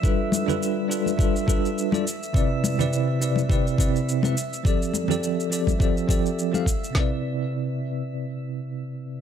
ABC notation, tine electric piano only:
X:1
M:4/4
L:1/16
Q:"Swing 16ths" 1/4=104
K:C
V:1 name="Tine electric piano"
[G,DFAB]3 [G,DFAB]3 [G,DFAB]2 [G,DFAB]2 [G,DFAB]3 [G,DFAd] z2 | [C,CEBd]3 [C,CEBd]3 [C,CEBd]2 [C,CEBd]2 [C,CEBd]3 [C,CEBe] z2 | [F,CGAd]3 [F,CGAd]3 [F,CGAd]2 [F,CGAd]2 [F,CGAd]3 [F,CGAf] z2 | [C,CEBd]16 |]